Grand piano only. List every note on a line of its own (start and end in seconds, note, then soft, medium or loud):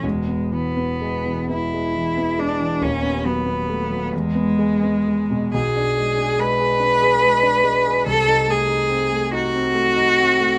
0.03 2.78 E1 soft
0.03 2.78 E2 soft
0.27 0.66 B3 soft
0.52 0.92 E3 soft
0.77 1.17 B3 soft
1.01 1.41 G#3 soft
1.26 1.64 E3 soft
1.49 1.86 B3 soft
1.73 2.09 G#3 soft
1.95 2.30 E3 soft
2.17 2.52 B3 soft
2.38 2.73 G#3 soft
2.60 2.82 E3 soft
2.81 4.08 D#1 medium
2.81 4.08 D#2 medium
3.03 3.38 B3 soft
3.26 3.60 F#3 soft
3.46 3.82 B3 soft
3.69 4.04 A3 medium
3.90 4.12 F#3 soft
4.13 5.50 E2 medium
4.35 4.73 B3 soft
4.58 4.97 G#3 soft
4.83 5.22 B3 soft
5.08 5.45 G#3 soft
5.31 5.54 B2 soft
5.54 8.03 B1 medium
5.76 6.10 D4 soft
5.98 6.31 G#3 soft
6.18 6.51 D4 soft
6.39 6.72 G#3 soft
6.60 6.93 G#4 soft
6.80 7.14 D4 soft
7.01 7.35 G#4 medium
7.22 7.56 G#3 medium
7.43 7.77 D4 medium
7.64 7.98 G#3 medium
7.86 8.07 G#4 medium
8.06 10.59 C2 medium
8.28 8.62 D#4 soft
8.48 8.82 A3 soft
8.68 9.03 D#4 soft
8.89 9.24 C4 medium
9.12 9.46 A3 soft
9.32 9.67 D#4 medium
9.54 9.89 C4 medium
9.75 10.10 A3 soft
9.96 10.32 D#4 medium
10.18 10.54 C4 medium
10.41 10.59 A3 medium